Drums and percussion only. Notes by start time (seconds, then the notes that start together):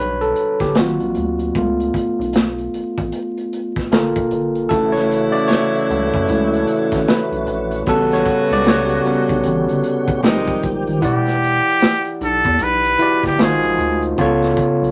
0.21 closed hi-hat
0.36 closed hi-hat
0.59 kick, snare, closed hi-hat
0.75 snare, closed hi-hat
1.00 closed hi-hat
1.15 closed hi-hat
1.39 closed hi-hat
1.55 kick, closed hi-hat
1.80 closed hi-hat
1.94 kick, closed hi-hat
2.21 closed hi-hat
2.33 snare, closed hi-hat
2.58 closed hi-hat
2.74 closed hi-hat
2.98 kick, closed hi-hat
3.12 closed hi-hat
3.38 closed hi-hat
3.53 closed hi-hat
3.76 kick, snare, closed hi-hat
3.92 snare, closed hi-hat
4.16 kick, closed hi-hat
4.31 closed hi-hat
4.55 closed hi-hat
4.71 kick, closed hi-hat
4.95 snare, closed hi-hat
5.11 closed hi-hat
5.36 closed hi-hat
5.48 snare, closed hi-hat
5.74 closed hi-hat
5.90 closed hi-hat
6.14 kick, closed hi-hat
6.28 closed hi-hat
6.53 closed hi-hat
6.68 closed hi-hat
6.92 kick, snare, closed hi-hat
7.08 snare, closed hi-hat
7.32 closed hi-hat
7.47 closed hi-hat
7.71 closed hi-hat
7.87 kick, closed hi-hat
8.11 snare, closed hi-hat
8.26 kick, closed hi-hat
8.53 closed hi-hat
8.64 snare, closed hi-hat
8.90 closed hi-hat
9.06 closed hi-hat
9.29 kick, closed hi-hat
9.43 closed hi-hat
9.69 closed hi-hat
9.84 closed hi-hat
10.08 kick, closed hi-hat
10.24 snare, closed hi-hat
10.48 kick, closed hi-hat
10.62 kick, closed hi-hat
10.87 closed hi-hat
11.02 kick, closed hi-hat
11.26 snare, closed hi-hat
11.43 closed hi-hat
11.68 closed hi-hat
11.80 snare, closed hi-hat
12.05 closed hi-hat
12.21 closed hi-hat
12.44 kick, closed hi-hat
12.59 closed hi-hat
12.84 closed hi-hat
12.99 closed hi-hat
13.23 kick, snare, closed hi-hat
13.39 snare, closed hi-hat
13.63 closed hi-hat
13.78 closed hi-hat
14.02 closed hi-hat
14.18 kick, closed hi-hat
14.42 snare, closed hi-hat
14.57 kick, closed hi-hat
14.84 closed hi-hat